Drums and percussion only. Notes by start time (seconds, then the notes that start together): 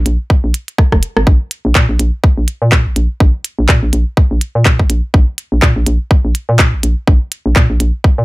0.06 closed hi-hat
0.30 kick
0.54 closed hi-hat
0.68 closed hi-hat
0.78 kick, cross-stick
0.92 kick, cross-stick
1.03 closed hi-hat
1.17 cross-stick
1.27 kick
1.51 closed hi-hat
1.75 kick, clap
1.99 closed hi-hat
2.24 kick
2.48 closed hi-hat
2.72 kick, clap
2.96 closed hi-hat
3.20 kick
3.45 closed hi-hat
3.69 kick, clap
3.93 closed hi-hat
4.17 kick
4.41 closed hi-hat
4.65 kick, clap
4.79 kick
4.90 closed hi-hat
5.14 kick
5.38 closed hi-hat
5.62 kick, clap
5.86 closed hi-hat
6.11 kick
6.35 closed hi-hat
6.59 kick, clap
6.83 closed hi-hat
7.07 kick
7.32 closed hi-hat
7.56 kick, clap
7.80 closed hi-hat
8.04 kick